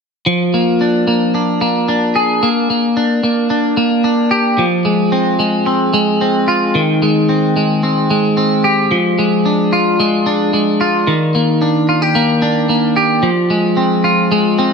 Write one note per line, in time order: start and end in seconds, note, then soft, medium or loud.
0.26 2.42 F3 medium
0.54 1.07 A#3 soft
0.81 1.34 D4 soft
1.07 1.61 A#3 soft
1.35 1.88 D4 soft
1.61 2.42 A#3 soft
1.88 2.96 D4 soft
2.16 2.48 G#4 medium
2.43 2.69 A#3 medium
2.70 3.22 A#3 soft
2.97 3.49 D4 soft
3.23 3.76 A#3 soft
3.50 4.03 D4 soft
3.77 4.64 A#3 medium
4.04 4.64 D4 soft
4.31 4.64 G4 medium
4.58 6.75 F3 medium
4.85 5.39 G#3 soft
5.12 5.66 C4 soft
5.39 5.93 G#3 soft
5.66 6.21 C4 medium
5.93 7.02 G#3 medium
6.21 7.29 C4 soft
6.48 6.80 F4 medium
6.75 8.91 D#3 medium
7.02 7.56 G#3 soft
7.29 7.82 C4 soft
7.56 8.10 G#3 soft
7.83 8.36 C4 soft
8.10 9.18 G#3 medium
8.37 8.97 C4 medium
8.64 8.97 G4 medium
8.91 11.07 F3 medium
9.19 9.98 G#3 medium
9.46 10.26 D4 soft
9.73 10.79 F4 medium
10.00 10.52 G#3 medium
10.26 11.61 D4 medium
10.53 11.13 G#3 medium
10.81 11.13 F4 medium
11.07 13.22 D#3 medium
11.35 12.14 A#3 medium
11.62 12.41 D4 soft
11.89 12.02 F4 soft
12.02 12.95 G4 soft
12.15 12.68 A#3 medium
12.42 13.29 D4 medium
12.69 13.29 A#3 medium
12.96 13.29 G4 medium
13.23 14.73 F3 medium
13.50 14.31 G#3 medium
13.77 14.58 C4 medium
14.04 14.73 F4 medium
14.32 14.73 G#3 medium
14.59 14.73 C4 medium